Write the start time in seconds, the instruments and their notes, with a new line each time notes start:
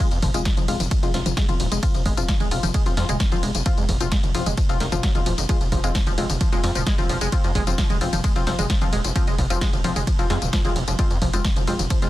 0.00 synth stab F3 C4 F4
0.11 analog synth bass F2, synth arpeggio sound F3, closed hi-hat, tambourine
0.22 analog synth bass F1, synth arpeggio sound F3, kick, mid tom, open hi-hat
0.34 analog synth bass F1, synth stab F3 C4 F4, synth arpeggio sound G#3, closed hi-hat, tambourine
0.45 synth arpeggio sound F3, kick, snare, closed hi-hat, ride, tambourine
0.57 analog synth bass F1, synth arpeggio sound F3, closed hi-hat, mid tom, tambourine
0.68 analog synth bass F1, synth stab F3 C4 F4, synth arpeggio sound G#3, open hi-hat
0.80 analog synth bass F1, synth arpeggio sound F3, mid tom, open hi-hat, tambourine
0.91 synth arpeggio sound F3, kick, closed hi-hat, ride, tambourine
1.03 analog synth bass F1, synth stab F3 C4 F4, synth arpeggio sound G#3, closed hi-hat, tambourine
1.14 analog synth bass F1, synth arpeggio sound F3, synth stab F3 C4 F4, snare, open hi-hat
1.26 analog synth bass F1, synth arpeggio sound F3, closed hi-hat, mid tom, tambourine
1.37 synth arpeggio sound G#3, kick, snare, closed hi-hat, ride, tambourine
1.49 analog synth bass F1, synth arpeggio sound F3, synth stab F3 C4 F4, closed hi-hat, mid tom, tambourine
1.60 analog synth bass D#1, synth arpeggio sound F3, open hi-hat
1.72 analog synth bass F1, synth arpeggio sound G#3, closed hi-hat, tambourine
1.83 synth arpeggio sound F3, synth stab F3 C4 F4, kick, closed hi-hat, ride, tambourine
1.95 analog synth bass F1, synth arpeggio sound F3, closed hi-hat, tambourine
2.06 analog synth bass F1, synth arpeggio sound G#3, kick, mid tom, open hi-hat
2.17 analog synth bass F1, synth stab F3 C4 F4, synth arpeggio sound F3, closed hi-hat, tambourine
2.29 synth arpeggio sound F3, kick, snare, closed hi-hat, ride, tambourine
2.40 analog synth bass F1, synth arpeggio sound G#3, closed hi-hat, mid tom, tambourine
2.51 analog synth bass F1, synth stab F3 C4 F4, synth arpeggio sound F3, open hi-hat
2.63 analog synth bass F1, synth arpeggio sound F3, mid tom, open hi-hat, tambourine
2.74 synth arpeggio sound G#3, kick, closed hi-hat, ride, tambourine
2.86 analog synth bass F1, synth arpeggio sound F3, synth stab F3 C4 F4, closed hi-hat, tambourine
2.97 analog synth bass F2, synth arpeggio sound F3, synth stab F3 C4 F4, snare, open hi-hat
3.09 analog synth bass D#1, synth arpeggio sound G#3, closed hi-hat, mid tom, tambourine
3.20 synth arpeggio sound F3, kick, snare, closed hi-hat, ride, tambourine
3.32 analog synth bass F1, synth arpeggio sound F3, synth stab F3 C4 F4, closed hi-hat, mid tom, tambourine
3.43 analog synth bass F1, synth arpeggio sound G#3, open hi-hat
3.55 analog synth bass F1, synth arpeggio sound F3, closed hi-hat, tambourine
3.66 synth arpeggio sound F3, synth stab F3 C4 F4, kick, closed hi-hat, ride, tambourine
3.78 analog synth bass F2, synth arpeggio sound G#3, closed hi-hat, tambourine
3.89 analog synth bass F1, synth arpeggio sound F3, kick, mid tom, open hi-hat
4.01 analog synth bass F1, synth arpeggio sound F3, synth stab F3 C4 F4, closed hi-hat, tambourine
4.12 synth arpeggio sound G#3, kick, snare, closed hi-hat, ride, tambourine
4.23 analog synth bass F1, synth arpeggio sound F3, closed hi-hat, mid tom, tambourine
4.35 analog synth bass F1, synth arpeggio sound F3, synth stab F3 C4 F4, open hi-hat
4.46 analog synth bass F1, synth arpeggio sound G#3, mid tom, open hi-hat, tambourine
4.57 synth arpeggio sound F3, kick, closed hi-hat, ride, tambourine
4.69 analog synth bass F1, synth stab F3 C4 F4, synth arpeggio sound F3, closed hi-hat, tambourine
4.80 analog synth bass F1, synth arpeggio sound D#3, snare, open hi-hat
4.92 analog synth bass F1, synth stab F3 C4 F4, synth arpeggio sound F3, closed hi-hat, mid tom, tambourine
5.03 synth arpeggio sound F#3, kick, snare, closed hi-hat, ride, tambourine
5.15 analog synth bass F1, synth stab F3 C4 F4, synth arpeggio sound G#3, closed hi-hat, mid tom, tambourine
5.26 analog synth bass D#1, synth arpeggio sound F3, open hi-hat
5.38 analog synth bass F1, synth arpeggio sound D#3, closed hi-hat, tambourine
5.49 synth stab F3 C4 F4, synth arpeggio sound G#3, kick, closed hi-hat, ride, tambourine
5.61 analog synth bass F1, synth arpeggio sound F3, closed hi-hat, tambourine
5.72 analog synth bass F1, synth arpeggio sound F3, kick, mid tom, open hi-hat
5.84 analog synth bass F1, synth stab F3 C4 F4, synth arpeggio sound G#3, closed hi-hat, tambourine
5.95 synth arpeggio sound F3, kick, snare, closed hi-hat, ride, tambourine
6.07 analog synth bass F1, synth arpeggio sound F3, closed hi-hat, mid tom, tambourine
6.18 analog synth bass F1, synth stab F3 C4 F4, synth arpeggio sound G#3, open hi-hat
6.30 analog synth bass F1, synth arpeggio sound F3, mid tom, open hi-hat, tambourine
6.41 synth arpeggio sound F3, kick, closed hi-hat, ride, tambourine
6.52 analog synth bass F1, synth stab F3 C4 F4, synth arpeggio sound G#3, closed hi-hat, tambourine
6.64 analog synth bass F2, synth arpeggio sound F3, synth stab F3 C4 F4, snare, open hi-hat
6.75 analog synth bass D#1, synth arpeggio sound F3, closed hi-hat, mid tom, tambourine
6.87 synth arpeggio sound G#3, kick, snare, closed hi-hat, ride, tambourine
6.98 analog synth bass F1, synth stab F3 C4 F4, synth arpeggio sound F3, closed hi-hat, mid tom, tambourine
7.09 analog synth bass F1, synth arpeggio sound F3, open hi-hat
7.21 analog synth bass F1, synth arpeggio sound G#3, closed hi-hat, tambourine
7.32 synth stab F3 C4 F4, synth arpeggio sound F3, kick, closed hi-hat, ride, tambourine
7.44 analog synth bass F2, synth arpeggio sound F3, closed hi-hat, tambourine
7.55 analog synth bass F1, synth arpeggio sound G#3, kick, mid tom, open hi-hat
7.67 analog synth bass F1, synth arpeggio sound F3, synth stab F3 C4 F4, closed hi-hat, tambourine
7.78 synth arpeggio sound F3, kick, snare, closed hi-hat, ride, tambourine
7.90 analog synth bass F1, synth arpeggio sound G#3, closed hi-hat, mid tom, tambourine
8.01 analog synth bass F1, synth stab F3 C4 F4, synth arpeggio sound F3, open hi-hat
8.13 analog synth bass F1, synth arpeggio sound F3, mid tom, open hi-hat, tambourine
8.24 synth arpeggio sound G#3, kick, closed hi-hat, ride, tambourine
8.36 analog synth bass F1, synth stab F3 C4 F4, synth arpeggio sound F3, closed hi-hat, tambourine
8.47 analog synth bass F1, synth arpeggio sound F3, synth stab F3 C4 F4, snare, open hi-hat
8.59 analog synth bass F1, synth arpeggio sound G#3, closed hi-hat, mid tom, tambourine
8.70 synth arpeggio sound F3, kick, snare, closed hi-hat, ride, tambourine
8.82 analog synth bass F1, synth stab F3 C4 F4, synth arpeggio sound F3, closed hi-hat, mid tom, tambourine
8.93 analog synth bass D#1, synth arpeggio sound G#3, open hi-hat
9.04 analog synth bass F1, synth arpeggio sound F3, closed hi-hat, tambourine
9.16 synth arpeggio sound F3, synth stab F3 C4 F4, kick, closed hi-hat, ride, tambourine
9.27 analog synth bass F1, synth arpeggio sound G#3, closed hi-hat, tambourine
9.38 analog synth bass F1, synth arpeggio sound F3, kick, mid tom, open hi-hat
9.50 analog synth bass F1, synth arpeggio sound F3, synth stab F3 C4 F4, closed hi-hat, tambourine
9.61 synth arpeggio sound G#3, kick, snare, closed hi-hat, ride, tambourine
9.73 analog synth bass F1, synth arpeggio sound F3, closed hi-hat, mid tom, tambourine
9.84 analog synth bass F1, synth stab F3 C4 F4, synth arpeggio sound F3, open hi-hat
9.96 analog synth bass F1, synth arpeggio sound G#3, mid tom, open hi-hat, tambourine
10.07 synth arpeggio sound F3, kick, closed hi-hat, ride, tambourine
10.19 analog synth bass F1, synth stab F3 C4 F4, synth arpeggio sound F3, closed hi-hat, tambourine
10.30 analog synth bass F2, synth stab F3 C4 F4, synth arpeggio sound G#3, snare, open hi-hat
10.42 analog synth bass D#1, synth arpeggio sound F3, closed hi-hat, mid tom, tambourine
10.53 synth arpeggio sound F3, kick, snare, closed hi-hat, ride, tambourine
10.65 analog synth bass F1, synth stab F3 C4 F4, synth arpeggio sound G#3, closed hi-hat, mid tom, tambourine
10.76 analog synth bass F1, synth arpeggio sound F3, open hi-hat
10.88 analog synth bass F1, synth arpeggio sound F3, closed hi-hat, tambourine
10.99 synth stab F3 C4 F4, synth arpeggio sound G#3, kick, closed hi-hat, ride, tambourine
11.11 analog synth bass F2, synth arpeggio sound F3, closed hi-hat, tambourine
11.22 analog synth bass F1, synth arpeggio sound F3, kick, mid tom, open hi-hat
11.33 analog synth bass F1, synth stab F3 C4 F4, synth arpeggio sound G#3, closed hi-hat, tambourine
11.45 synth arpeggio sound F3, kick, snare, closed hi-hat, ride, tambourine
11.56 analog synth bass F1, synth arpeggio sound F3, closed hi-hat, mid tom, tambourine
11.67 analog synth bass F1, synth stab F3 C4 F4, synth arpeggio sound G#3, open hi-hat
11.79 analog synth bass F1, synth arpeggio sound F3, mid tom, open hi-hat, tambourine
11.90 synth arpeggio sound F3, kick, closed hi-hat, ride, tambourine
12.02 analog synth bass F1, synth stab F3 C4 F4, synth arpeggio sound G#3, closed hi-hat, tambourine